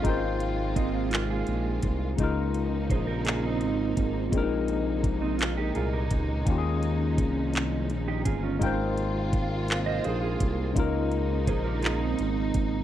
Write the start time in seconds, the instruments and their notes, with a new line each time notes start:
Already playing: clean electric guitar C#4 F4, string section F4
0.02 analog synth bass G#1, string section C3 G#3 A#3, tine electric piano G#3 D#4 F4, kick, closed hi-hat
0.07 tine electric piano A#4 C5 G5
0.40 closed hi-hat
0.76 clean electric guitar C4 D#4, kick, closed hi-hat
1.11 clean electric guitar F4, clap, closed hi-hat
1.30 clean electric guitar F4 G#4
1.47 analog synth bass A#1, closed hi-hat
1.82 analog synth bass C2, kick, closed hi-hat
2.17 analog synth bass C#2, tine electric piano C#3 G#3 D#4, string section C#3 F3 A#3 D#4, kick, closed hi-hat
2.22 tine electric piano F4 A#4
2.54 closed hi-hat
2.90 analog synth bass A#1, clean electric guitar G#4 C5, kick, closed hi-hat
3.07 clean electric guitar G4 A#4
3.25 clean electric guitar F4 G#4, clap, closed hi-hat
3.44 clean electric guitar C4 D#4
3.61 analog synth bass G#1, closed hi-hat
3.97 analog synth bass G#1, kick, closed hi-hat
4.31 analog synth bass A#1, tine electric piano A#2 G#3 C4, string section C3 G#3 D#4, kick, closed hi-hat
4.36 tine electric piano D4 A#4
4.42 tine electric piano D#4
4.68 closed hi-hat
5.04 kick, closed hi-hat
5.22 clean electric guitar C4 D#4
5.39 clean electric guitar F4, clap, closed hi-hat
5.58 clean electric guitar D#4 G4
5.75 analog synth bass C2, clean electric guitar F4 G#4, closed hi-hat
5.93 clean electric guitar G4 A#4
6.11 analog synth bass C#2, kick, closed hi-hat
6.45 analog synth bass D#2, tine electric piano D#3 A#3 C#4, string section F3 C#4, kick, closed hi-hat
6.50 tine electric piano F4 G4
6.58 tine electric piano G#4
6.83 closed hi-hat
7.18 analog synth bass C2, kick, closed hi-hat
7.54 clap, closed hi-hat
7.90 analog synth bass A#1, closed hi-hat
8.08 clean electric guitar D#4 G4
8.25 analog synth bass G1, clean electric guitar F4 G#4, kick, closed hi-hat
8.43 clean electric guitar C#4 F4
8.59 analog synth bass G#1, string section C3 G#3 A#3 F4, tine electric piano G#3 D#4 F4, kick, closed hi-hat
8.63 tine electric piano A#4 C5 G5
8.97 closed hi-hat
9.33 kick, closed hi-hat
9.68 clap, closed hi-hat
9.86 clean electric guitar C5 D#5
10.04 analog synth bass A#1, clean electric guitar G#4 C5, closed hi-hat
10.22 clean electric guitar F4 G#4
10.40 analog synth bass C2, kick, closed hi-hat
10.73 analog synth bass C#2, tine electric piano C#3 G#3 D#4, string section C#3 F3 D#4, kick, closed hi-hat
10.78 tine electric piano F4 A#4
11.12 closed hi-hat
11.47 analog synth bass A#1, clean electric guitar G#4 C5, kick, closed hi-hat
11.64 clean electric guitar G4 A#4
11.82 clean electric guitar F4 G#4, clap, closed hi-hat
11.99 clean electric guitar C4 D#4
12.19 analog synth bass G#1, closed hi-hat
12.54 analog synth bass G#1, kick, closed hi-hat